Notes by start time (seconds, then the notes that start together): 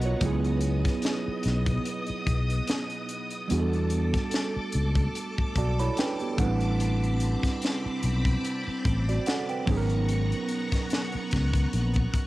Already playing: B1 B3 F#4 A#4 D#5 F#5 A#5 C#6
0.01 C#5, closed hi-hat
0.06 F4
0.21 C#2 F#3 B3 D#4 D#5 D#6, kick, closed hi-hat
0.25 E4 G#4
0.44 closed hi-hat
0.61 closed hi-hat
0.85 kick, snare, closed hi-hat
1.02 snare, closed hi-hat
1.28 muted fretless electric bass stroke
1.43 B1, snare, closed hi-hat
1.66 kick, closed hi-hat
1.85 closed hi-hat
2.07 muted fretless electric bass stroke, closed hi-hat
2.27 B1, kick, closed hi-hat
2.50 closed hi-hat
2.67 snare, closed hi-hat
2.90 closed hi-hat
3.09 closed hi-hat
3.30 closed hi-hat
3.48 E2 G3 B3 D4 F#4 A4 A5 D6, closed hi-hat
3.53 G#4
3.60 A4
3.73 closed hi-hat
3.90 closed hi-hat
4.14 kick, snare, closed hi-hat
4.31 snare, closed hi-hat
4.57 muted fretless electric bass stroke
4.72 C#2, closed hi-hat
4.95 kick, closed hi-hat
5.15 closed hi-hat
5.38 muted fretless electric bass stroke, kick
5.56 B1 F#4 D5 A5, kick, closed hi-hat
5.79 E4 C#5 B5, closed hi-hat
5.97 D4 B4 G5, snare, closed hi-hat
6.20 B3 G4, closed hi-hat
6.37 A1 G3 B3 C4 D4 E4 F#5 B5, kick, closed hi-hat
6.43 C4 B4
6.60 closed hi-hat
6.80 closed hi-hat
7.03 closed hi-hat
7.20 closed hi-hat
7.43 kick, snare, closed hi-hat
7.62 snare, closed hi-hat
7.86 muted fretless electric bass stroke
8.03 B1, closed hi-hat
8.25 kick, closed hi-hat
8.45 closed hi-hat
8.68 muted fretless electric bass stroke
8.85 A1, kick, closed hi-hat
9.09 F#4 D5, closed hi-hat
9.26 A4 F#5, snare, closed hi-hat
9.49 B4 G5, closed hi-hat
9.66 G#1 F#3 B3 C#4 F#5 A#5 C#6, kick, open hi-hat
9.70 D#4 G#4
9.77 A#4
9.90 closed hi-hat
10.09 closed hi-hat
10.32 closed hi-hat
10.49 closed hi-hat
10.72 kick, snare, closed hi-hat
10.90 snare, closed hi-hat
11.12 muted fretless electric bass stroke, closed hi-hat
11.31 C#2, kick, snare, closed hi-hat
11.54 kick, closed hi-hat
11.73 A#1, closed hi-hat
11.94 kick, closed hi-hat
12.14 muted fretless electric bass stroke, kick, closed hi-hat